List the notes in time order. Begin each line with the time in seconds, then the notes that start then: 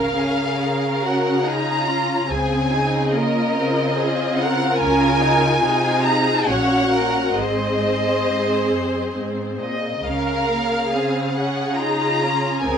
Already playing: C#2 C#3 C#4 A#4 F5
0.16 C#4 G#4
0.61 G#4 A#4
1.03 F#4 F#5
1.45 D#4 F4 G#4 A#5
1.88 C#4 F4
2.29 C#2 C#3 C4 G#4 G#5
2.72 D#4
3.14 A#3 F4 A#4 D#5
3.56 C4
3.98 G#4
4.38 A#4 F#5
4.80 C#2 C#3 C#4 G#5
5.21 D#4
5.62 C3 D#4 G#4
6.04 A#5
6.46 A#1 A#2 C#4 F#4 C#5 F#5
6.92 A#4
7.36 G#1 G#2 C4 G#4 C5 D#5
8.26 G#2
8.70 F#2
9.15 G#2
9.60 A#2 D#5
10.05 C#2 C#3 C#4 A#4 F5
10.50 A#3
10.93 C4 G#4
11.36 C#4 G#4 F#5
11.78 D#4 F4 A#5
12.21 C#4
12.61 C#2 C#3 C4 G#4 A#4 G#5